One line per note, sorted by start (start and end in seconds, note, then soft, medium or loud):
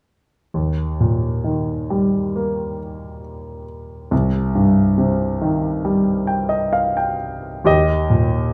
0.54 4.08 D#2 soft
1.00 2.77 A#2 soft
1.44 3.21 D#3 soft
1.90 3.65 G3 soft
2.36 4.08 A#3 soft
4.11 7.61 C2 soft
4.55 6.25 G2 soft
4.98 6.70 C3 soft
5.41 7.16 D#3 soft
5.85 7.62 G3 soft
6.27 6.49 G5 soft
6.49 6.71 D#5 soft
6.73 6.95 F5 soft
6.97 7.61 G5 soft
7.65 8.53 D#2 soft
7.65 8.53 G4 soft
7.65 8.53 D#5 medium
8.10 8.53 A#2 soft